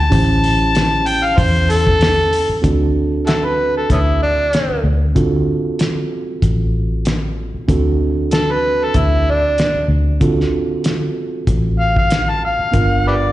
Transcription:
Already playing: A5
0.10 A1 C#4 E4 G4 C5, kick, open hi-hat
0.44 open hi-hat
0.75 snare, open hi-hat
1.06 G5, open hi-hat
1.25 F5
1.38 E2 C5, kick, open hi-hat
1.70 A4, open hi-hat
1.87 kick
2.01 snare, open hi-hat
2.33 open hi-hat
2.49 muted fingered electric bass stroke
2.62 D2 C4 D4 F#4 A4, kick, closed hi-hat
3.27 E4 F#4 A4, snare, closed hi-hat
3.45 B4
3.77 A4
3.90 D2 B3 C#4 E4, kick, closed hi-hat
4.23 D4
4.53 snare, closed hi-hat
4.69 muted fingered electric bass stroke
4.84 D2
5.15 D3 C4 F4 F#4 A4, kick, closed hi-hat
5.79 snare, closed hi-hat
6.42 A1, kick, closed hi-hat
7.05 snare, closed hi-hat
7.54 muted fingered electric bass stroke
7.67 D2 C4 D4 F#4 A4, kick, closed hi-hat
8.31 A4, snare, closed hi-hat
8.52 B4
8.84 A4
8.94 D2 E4, kick, closed hi-hat
9.30 D4
9.58 snare, closed hi-hat
9.74 muted fingered electric bass stroke
9.88 D2
10.20 D3 C4 F4 F#4 A4, kick, closed hi-hat
10.40 snare
10.84 snare, closed hi-hat
11.47 A1, kick, closed hi-hat
11.79 F5
11.96 F5, kick
12.10 snare, closed hi-hat
12.30 A5
12.45 F5
12.59 muted fingered electric bass stroke
12.71 G1 B3 D4 F4 A#4, kick, closed hi-hat
13.08 G4 B4 D5

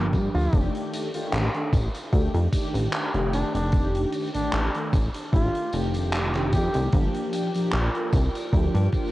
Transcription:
Already playing: G1 F3 A#3 D4 G4
0.13 G2, kick, closed hi-hat, tambourine
0.34 D2 F4, closed hi-hat, tambourine
0.52 F1 D#3 A3 D4 G4, kick, closed hi-hat, tambourine
0.75 closed hi-hat
0.93 closed hi-hat, tambourine
1.14 D#3 A3 D4 G4, closed hi-hat, tambourine
1.33 A1, clap, closed hi-hat, tambourine
1.54 D#3 A3 D4 A4, closed hi-hat
1.73 A1, kick, closed hi-hat, tambourine
1.95 closed hi-hat, tambourine
2.12 D2 D#3 A3 D4 G4, kick, closed hi-hat, tambourine
2.35 F2, closed hi-hat
2.52 D#3 A3 D4 G4, kick, closed hi-hat, tambourine
2.74 A1, closed hi-hat, tambourine
2.93 clap, closed hi-hat, tambourine
3.14 F1 D#3 A3 D4 G4, closed hi-hat
3.33 D4, closed hi-hat, tambourine
3.54 F1 D4, closed hi-hat, tambourine
3.72 D#3 A3 D4 G4, kick, closed hi-hat, tambourine
3.95 closed hi-hat
4.13 closed hi-hat, tambourine
4.34 A1 D#3 A3 D4 G4, closed hi-hat, tambourine
4.53 A1, clap, closed hi-hat, tambourine
4.74 D#3 A3 D4 A4, closed hi-hat
4.93 A1, kick, closed hi-hat, tambourine
5.14 closed hi-hat, tambourine
5.33 A1 D#3 A3 D4 F4 G4, kick, closed hi-hat, tambourine
5.55 closed hi-hat
5.73 F1 D#3 A3 D4 G4, closed hi-hat, tambourine
5.94 closed hi-hat, tambourine
6.13 clap, closed hi-hat, tambourine
6.34 D#3 A3 D4 G4, clap, closed hi-hat
6.53 F2 G4, kick, closed hi-hat, tambourine
6.74 C2, closed hi-hat, tambourine
6.93 G1 F3 A#3 D4 F4 G4 A#4 D5 G5, kick, closed hi-hat, tambourine
7.15 closed hi-hat
7.33 closed hi-hat, tambourine
7.54 F3 A#3 D4 G4, closed hi-hat, tambourine
7.73 A#1, clap, closed hi-hat, tambourine
7.94 F3 A#3 D4 A4, closed hi-hat
8.13 C2, kick, closed hi-hat, tambourine
8.35 closed hi-hat, tambourine
8.53 D2 F3 A#3 D4 G4, kick, closed hi-hat, tambourine
8.75 G2, closed hi-hat
8.93 F3 A#3 D4 G4, kick, closed hi-hat, tambourine

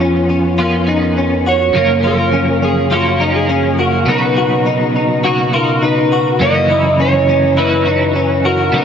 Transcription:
Already playing: F2 F3 B3 C#4 F4 G#4
0.00 C#4
0.29 C#4
0.58 F3 B3 C#4 F4 A#4
0.63 G#4
0.87 C#4 D#4 G#4
0.91 B3
1.17 C#4
1.46 F#4 C#5
1.73 F#2 C#3 F3 A#3 F5
1.78 A#3 C#4 A#4
2.03 F4 A#4
2.22 C#5
2.33 C#4
2.62 C#4 G#4
2.90 F3 A#3 C#4 F4 F#4
2.95 A#4
3.20 A#3 C#4 D#4 A#4
3.24 F3
3.36 G#4
3.49 C#4
3.79 F#4 A#4
4.06 B2 F#3 B3 D#4 B4 A#5
4.11 D#4 F#4
4.37 F#4
4.66 D#4
4.96 D#4
5.23 F#3 A#3 D#4 F#4
5.28 F#4
5.53 D#4 F4 F#4 A#4
5.83 D#4 B4
6.12 F#4
6.39 F#2 C#3 E3 A#3 E4 D#5
6.44 A#3 C#4 F#4
6.70 E4
7.00 C#4 C#5
7.29 C#4
7.57 E3 A#3 C#4 E4 B4
7.62 F#4
7.85 C#4 D#4 F#4
7.90 E3
8.15 C#4
8.45 F#4 A#4
8.72 B2 F#3 A#3 B3 D#4
8.78 D#4 F#4

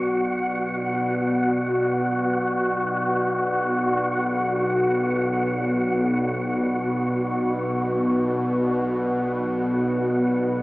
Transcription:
Already playing: B1 B2 B3 F#4 B4 D5 F#5
10.11 G#3 B3 B4
10.35 D#4

